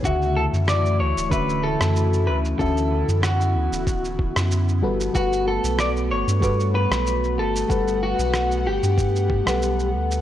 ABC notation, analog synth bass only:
X:1
M:4/4
L:1/16
Q:"Swing 16ths" 1/4=94
K:D
V:1 name="Analog synth bass" clef=bass
D,,3 F,,3 D,, D,,,4 F,,3 D,,2 | D,,3 F,,3 D,, D,,,4 F,,3 G,,,2 | G,,,3 B,,,3 G,,, G,,4 B,,,3 G,,,2 | G,,,3 B,,,3 G,,, G,,4 B,,,3 D,,2 |]